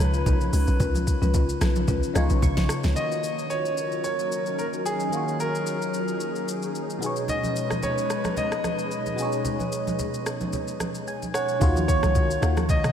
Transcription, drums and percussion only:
0.14 shaker medium
0.26 kick loud
0.26 low conga medium
0.26 shaker medium
0.41 high conga medium
0.41 shaker soft
0.53 open hi-hat medium
0.53 shaker loud
0.67 shaker medium
0.80 kick loud
0.80 low conga medium
0.80 shaker medium
0.95 high conga medium
0.95 shaker medium
1.07 kick loud
1.07 shaker loud
1.23 high conga medium
1.23 shaker soft
1.34 kick loud
1.34 low conga medium
1.34 shaker medium
1.49 shaker medium
1.61 cross-stick loud
1.61 snare medium
1.61 shaker medium
1.76 high conga medium
1.76 shaker soft
1.88 kick loud
1.88 low conga medium
1.88 shaker medium
2.03 shaker soft
2.15 cross-stick medium
2.15 high conga medium
2.15 shaker loud
2.30 shaker medium
2.42 kick loud
2.42 low conga medium
2.42 shaker medium
2.57 snare medium
2.57 high conga medium
2.57 shaker soft
2.69 cross-stick loud
2.69 shaker loud
2.84 snare medium
2.84 shaker medium
2.96 shaker medium
3.12 shaker soft
3.23 shaker medium
3.39 shaker soft
3.50 shaker medium
3.65 shaker medium
3.77 shaker medium
3.92 shaker soft
4.04 shaker medium
4.19 shaker soft
4.32 shaker medium
4.46 shaker soft
4.59 shaker medium
4.73 shaker soft
4.86 shaker medium
5.00 shaker soft
5.13 shaker medium
5.28 shaker soft
5.40 shaker medium
5.55 shaker soft
5.67 shaker medium
5.82 shaker medium
5.94 shaker medium
6.08 shaker soft
6.20 shaker medium
6.36 shaker soft
6.48 shaker medium
6.62 shaker soft
6.75 shaker medium
6.90 shaker soft
7.02 shaker medium
7.16 shaker soft
7.28 low conga medium
7.28 shaker medium
7.43 high conga medium
7.43 shaker medium
7.56 shaker medium
7.70 cross-stick medium
7.70 high conga medium
7.70 shaker soft
7.83 low conga medium
7.83 shaker medium
7.98 shaker medium
8.10 cross-stick medium
8.10 shaker medium
8.24 cross-stick medium
8.24 high conga medium
8.24 shaker soft
8.37 low conga medium
8.37 shaker medium
8.52 cross-stick medium
8.52 shaker soft
8.64 cross-stick medium
8.64 high conga medium
8.64 shaker medium
8.79 shaker soft
8.91 shaker medium
9.06 high conga medium
9.06 shaker soft
9.18 shaker loud
9.32 shaker medium
9.45 low conga medium
9.45 shaker medium
9.60 high conga medium
9.60 shaker soft
9.72 shaker medium
9.87 high conga medium
9.87 shaker soft
9.99 low conga medium
9.99 shaker medium
10.14 shaker medium
10.26 cross-stick medium
10.26 shaker medium
10.41 high conga medium
10.41 shaker soft
10.53 low conga medium
10.53 shaker medium
10.68 shaker soft
10.80 cross-stick medium
10.80 high conga medium
10.80 shaker medium
10.95 shaker soft
11.08 shaker medium
11.22 high conga medium
11.22 shaker soft
11.34 cross-stick medium
11.34 shaker medium
11.49 shaker soft
11.61 kick loud
11.61 low conga medium
11.61 shaker medium
11.76 high conga medium
11.76 shaker medium
11.88 kick loud
11.88 shaker loud
12.03 cross-stick loud
12.03 high conga medium
12.03 shaker medium
12.15 kick loud
12.15 low conga medium
12.15 shaker medium
12.31 shaker medium
12.43 cross-stick loud
12.43 shaker medium
12.57 cross-stick medium
12.57 high conga medium
12.57 shaker soft
12.69 kick loud
12.69 low conga medium
12.69 shaker medium
12.84 cross-stick loud
12.84 mid tom medium
12.84 shaker medium

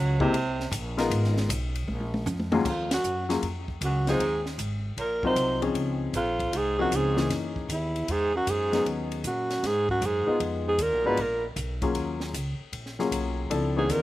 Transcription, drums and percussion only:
0.20 kick medium
0.33 kick soft
0.33 ride medium
0.60 snare soft
0.72 kick soft
0.72 hi-hat pedal medium
0.72 ride medium
0.98 snare medium
0.98 ride medium
1.11 kick soft
1.11 ride medium
1.24 snare soft
1.37 snare medium
1.49 kick soft
1.49 hi-hat pedal medium
1.49 ride medium
1.75 ride medium
1.88 mid tom medium
2.01 mid tom medium
2.14 mid tom medium
2.26 hi-hat pedal medium
2.26 high tom medium
2.40 mid tom medium
2.52 mid tom loud
2.65 kick medium
2.65 crash medium
2.91 snare medium
2.91 ride medium
3.04 hi-hat pedal medium
3.30 snare medium
3.30 ride soft
3.42 kick soft
3.42 ride medium
3.68 kick medium
3.81 kick soft
3.81 hi-hat pedal medium
3.81 ride medium
4.07 snare soft
4.07 ride soft
4.20 kick soft
4.20 ride medium
4.46 snare soft
4.59 kick soft
4.59 hi-hat pedal medium
4.59 ride medium
4.97 kick soft
4.97 ride medium
5.23 kick medium
5.36 kick soft
5.36 hi-hat pedal medium
5.36 ride medium
5.62 ride soft
5.75 kick soft
5.75 ride medium
6.14 kick soft
6.14 hi-hat pedal medium
6.14 ride medium
6.39 kick medium
6.39 ride soft
6.53 kick soft
6.53 ride medium
6.91 kick soft
6.91 hi-hat pedal medium
6.91 ride medium
7.17 snare medium
7.30 kick soft
7.30 snare soft
7.30 ride medium
7.56 kick medium
7.69 kick soft
7.69 hi-hat pedal medium
7.69 ride medium
7.96 ride soft
8.08 kick soft
8.08 ride medium
8.47 kick soft
8.47 hi-hat pedal medium
8.47 ride medium
8.73 snare soft
8.73 ride soft
8.86 kick soft
8.86 ride medium
9.12 ride soft
9.24 kick soft
9.24 hi-hat pedal medium
9.24 ride medium
9.50 snare soft
9.50 ride soft
9.63 kick soft
9.63 snare soft
9.63 ride medium
9.89 kick soft
10.02 kick soft
10.02 hi-hat pedal medium
10.02 ride medium
10.40 kick soft
10.40 ride medium
10.79 kick soft
10.79 hi-hat pedal medium
10.79 ride medium
11.17 kick soft
11.17 ride medium
11.56 kick soft
11.56 hi-hat pedal medium
11.56 ride medium
11.82 kick medium
11.82 ride soft
11.95 kick soft
11.95 ride medium
12.20 snare soft
12.34 kick soft
12.34 hi-hat pedal medium
12.34 ride medium
12.73 kick soft
12.73 ride medium
12.86 snare soft
12.99 snare soft
13.12 kick soft
13.12 hi-hat pedal medium
13.12 ride medium
13.51 kick soft
13.51 ride medium
13.89 kick soft
13.89 hi-hat pedal medium
13.89 ride medium

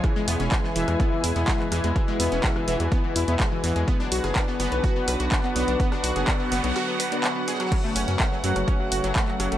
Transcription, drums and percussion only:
0.03 kick loud
0.03 cross-stick medium
0.03 closed hi-hat soft
0.03 ride medium
0.16 snare soft
0.27 open hi-hat loud
0.27 ride medium
0.40 snare medium
0.40 closed hi-hat soft
0.51 kick loud
0.51 snare loud
0.51 clap loud
0.51 closed hi-hat soft
0.64 snare medium
0.75 snare soft
0.75 open hi-hat medium
0.75 ride medium
0.88 cross-stick medium
0.88 closed hi-hat soft
1.00 kick loud
1.00 closed hi-hat soft
1.00 ride loud
1.24 open hi-hat loud
1.24 ride medium
1.36 snare medium
1.36 closed hi-hat soft
1.48 kick loud
1.48 snare loud
1.48 clap loud
1.48 closed hi-hat soft
1.60 clap soft
1.72 cross-stick medium
1.72 open hi-hat medium
1.72 ride medium
1.84 closed hi-hat soft
1.95 kick loud
1.95 closed hi-hat soft
1.95 ride medium
2.19 open hi-hat loud
2.19 ride medium
2.32 snare soft
2.32 closed hi-hat soft
2.44 kick loud
2.44 snare loud
2.44 clap loud
2.44 closed hi-hat soft
2.44 ride medium
2.56 cross-stick medium
2.68 open hi-hat medium
2.68 ride medium
2.80 closed hi-hat soft
2.92 kick loud
2.92 closed hi-hat soft
2.92 ride medium
3.16 open hi-hat loud
3.16 ride medium
3.28 closed hi-hat soft
3.28 ride soft
3.40 kick loud
3.40 cross-stick medium
3.40 snare loud
3.40 clap loud
3.40 closed hi-hat soft
3.64 open hi-hat medium
3.64 ride medium
3.76 closed hi-hat soft
3.88 kick loud
3.88 closed hi-hat soft
3.88 ride medium
4.00 snare soft
4.11 open hi-hat loud
4.11 ride medium
4.24 cross-stick medium
4.24 snare medium
4.24 closed hi-hat soft
4.35 kick loud
4.35 snare loud
4.35 clap loud
4.35 closed hi-hat soft
4.47 snare medium
4.60 open hi-hat medium
4.60 ride medium
4.72 closed hi-hat soft
4.83 kick loud
4.83 closed hi-hat soft
4.83 ride medium
5.08 cross-stick medium
5.08 open hi-hat loud
5.08 ride medium
5.20 closed hi-hat soft
5.31 kick loud
5.31 snare loud
5.31 clap loud
5.31 closed hi-hat soft
5.44 clap soft
5.56 open hi-hat medium
5.56 ride medium
5.68 closed hi-hat soft
5.80 kick loud
5.80 closed hi-hat soft
5.80 ride medium
5.92 cross-stick medium
6.03 open hi-hat loud
6.03 ride medium
6.16 snare soft
6.16 closed hi-hat soft
6.28 kick loud
6.28 snare loud
6.28 clap loud
6.28 closed hi-hat soft
6.28 ride medium
6.51 snare loud
6.51 open hi-hat medium
6.51 ride medium
6.64 snare soft
6.64 closed hi-hat soft
6.76 cross-stick medium
6.76 snare soft
6.76 closed hi-hat soft
6.76 ride medium
7.00 open hi-hat loud
7.00 ride medium
7.12 closed hi-hat soft
7.24 snare loud
7.24 clap loud
7.24 closed hi-hat soft
7.24 ride medium
7.48 snare loud
7.48 open hi-hat medium
7.48 ride medium
7.54 snare medium
7.54 ride medium
7.60 cross-stick medium
7.60 snare medium
7.60 closed hi-hat soft
7.60 ride medium
7.66 snare loud
7.66 ride medium
7.72 kick loud
7.72 cross-stick medium
7.72 closed hi-hat soft
7.72 crash medium
7.72 ride medium
7.84 snare soft
7.96 open hi-hat loud
7.96 ride medium
8.08 snare medium
8.08 closed hi-hat soft
8.20 kick loud
8.20 snare loud
8.20 clap loud
8.20 closed hi-hat soft
8.32 snare medium
8.44 snare medium
8.44 open hi-hat medium
8.44 ride medium
8.56 cross-stick medium
8.56 closed hi-hat soft
8.67 kick loud
8.67 closed hi-hat soft
8.67 ride medium
8.92 open hi-hat loud
8.92 ride medium
9.04 snare soft
9.04 closed hi-hat soft
9.16 kick loud
9.16 snare loud
9.16 clap loud
9.16 closed hi-hat soft
9.28 clap soft
9.40 cross-stick medium
9.40 open hi-hat medium
9.40 ride medium
9.52 closed hi-hat soft

